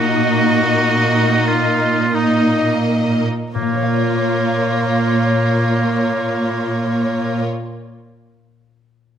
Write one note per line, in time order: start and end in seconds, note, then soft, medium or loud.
0.00 3.24 A#2 soft
0.00 3.39 A#2 soft
0.00 2.10 A#3 soft
0.00 3.44 A#3 soft
0.00 2.11 D#4 soft
0.00 3.48 D#4 soft
0.00 1.50 F#4 medium
0.00 2.12 D#5 soft
0.00 3.53 D#5 soft
1.48 2.16 F4 medium
2.14 3.25 A#3 soft
2.14 2.86 D#4 soft
2.14 3.26 D#4 soft
2.14 3.25 D#5 soft
3.53 7.45 A#2 soft
3.53 7.43 A#3 soft
3.53 7.44 A#3 soft
3.53 7.45 F4 soft
3.53 7.45 C#5 soft
3.62 7.52 A#3 soft
3.68 7.59 F4 soft
3.76 7.66 C#5 soft
3.83 7.73 F5 soft